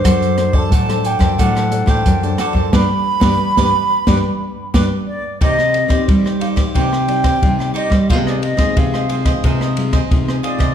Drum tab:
RD |----------------|----------------|x-xxx-xxx-xxx-xx|x-xxx-xxx-xxx-xx|
HH |xxx-xxxxxxxxxxx-|----------------|----------------|----------------|
SD |r-r--r-r-r-r--r-|o--o-o--o---o---|-r-r-r-r-r-r-r-r|-r-r-r-r-r-r-r-r|
BD |o--oo--oo--oo--o|o--o-o--o---o---|o--oo--oo--oo--o|o--oo--oo--oo--o|